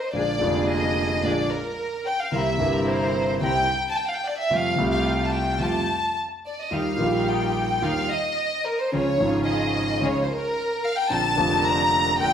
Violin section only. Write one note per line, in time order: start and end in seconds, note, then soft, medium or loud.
0.00 0.14 C5 medium
0.14 0.65 D5 medium
0.69 1.24 D#5 medium
1.24 1.51 D5 medium
1.51 2.05 A#4 medium
2.06 2.19 G5 medium
2.20 2.33 F5 medium
2.32 2.87 E5 medium
2.87 3.38 C5 medium
3.42 3.85 G5 medium
3.88 3.97 A5 medium
3.96 4.06 G5 medium
4.06 4.15 F5 medium
4.14 4.24 G5 medium
4.24 4.37 D5 medium
4.37 4.50 E5 medium
4.51 4.91 F5 medium
4.92 5.24 F5 medium
5.26 5.33 A5 medium
5.34 5.61 G5 medium
5.61 6.16 A5 medium
6.46 6.58 D5 medium
6.60 6.73 D#5 medium
6.74 7.28 F5 medium
7.29 7.83 G5 medium
7.84 8.11 F5 medium
8.11 8.66 D#5 medium
8.66 8.80 A#4 medium
8.80 8.93 C5 medium
8.94 9.44 C#5 medium
9.49 10.02 D#5 medium
10.04 10.23 C#5 medium
10.23 10.29 C5 medium
10.29 10.83 A#4 medium
10.84 10.97 F5 medium
10.96 11.10 G5 medium
11.10 11.64 A5 loud
11.64 12.19 A#5 loud
12.19 12.33 G5 loud